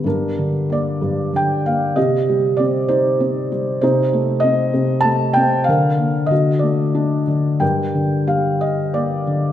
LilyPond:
<<
  \new Staff \with { instrumentName = "Felt piano" } { \time 3/4 \key g \minor \tempo 4 = 95 << { bes'4 d''4 g''8 f''8 | ees''4 d''8 c''4 r8 | c''4 ees''4 a''8 g''8 | f''4 ees''8 d''4 r8 |
g''4 f''8 ees''8 d''4 | } \\ { d'4. r4. | g'4. r4. | ees'4. r4. | bes'4 fis'4. r8 |
bes'4. r4. | } >> }
  \new Staff \with { instrumentName = "Felt piano" } { \clef bass \time 3/4 \key g \minor g,8 d8 bes8 g,8 d8 bes8 | c8 g8 c'8 ees'8 c'8 g8 | c8 a8 c'8 c8 a8 c'8 | d8 bes8 d8 a8 d'8 d8 |
g,8 d8 g4 bes8 d8 | }
>>